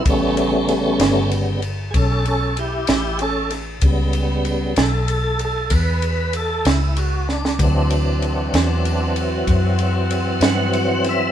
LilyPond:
<<
  \new Staff \with { instrumentName = "Saxophone section" } { \time 12/8 \key d \major \tempo 4. = 64 r1. | r1. | <c' e' fis'>1. | }
  \new Staff \with { instrumentName = "Tonewheel organ" } { \time 12/8 \key d \major <a cis'>2 r4 <cis' gis' a'>8 <cis' a'>8 <e' g'>8 <e' g'>8 <cis' a'>8 r8 | r4. <gis' a'>4 a'8 <bes' b'>4 a'8 e'8 fis'8 d'8~ | d'2~ d'8 r2 fis''4 e''8 | }
  \new Staff \with { instrumentName = "Tonewheel organ" } { \clef bass \time 12/8 \key d \major <cis g b>2 <cis g b>8 r2. r8 | <cis g b>4. r1 r8 | <e fis c'>1. | }
  \new Staff \with { instrumentName = "Fingered electric bass" } { \clef bass \time 12/8 \key d \major a,,4. g,,4. b,,4. a,,4. | cis,4. b,,4. e,4. cis,4. | d,4. e,4. fis,4. g,4. | }
  \new DrumStaff \with { instrumentName = "Drums" } \drummode { \time 12/8 <bd cymr>8 cymr8 <cymr sn>8 <cymr sn>8 cymr8 cymr8 <bd cymr>8 cymr8 cymr8 <cymr sn>8 cymr8 <cymr sn>8 | <bd cymr>8 cymr8 cymr8 <cymr sn>8 cymr8 cymr8 <bd cymr>8 cymr8 cymr8 <cymr sn>8 cymr8 sn16 sn16 | <bd cymr>8 cymr8 cymr8 <cymr sn>8 cymr8 cymr8 <bd cymr>8 cymr8 cymr8 <cymr sn>8 cymr8 <cymr sn>8 | }
>>